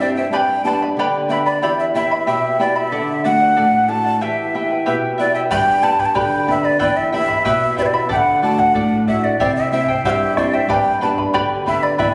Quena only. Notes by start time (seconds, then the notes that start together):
0.00 D5
0.16 E5
0.32 G5 A5
0.65 A5
1.30 E5
1.46 D5
1.62 D5
1.79 E5
1.95 E5
2.28 E5
2.60 D5
2.76 E5
3.24 F#5
3.89 A5
4.22 E5
4.88 E5
5.20 D5
5.35 E5
5.51 G5
5.83 A5
6.00 G5
6.05 A5
6.15 G5
6.50 E5
6.65 D5
6.81 D5
6.97 E5
7.14 E5
7.45 E5
7.79 B4 D5
7.86 D5
7.94 E5
8.11 G5
8.16 F#5
8.44 A5
8.59 F#5
9.08 E5
9.24 D5
9.40 D5
9.56 E5
9.72 E5
10.05 F#5
10.10 E5
10.37 D5
10.54 E5
10.70 G5 A5
11.02 A5
11.68 E5
11.83 D5
11.99 D5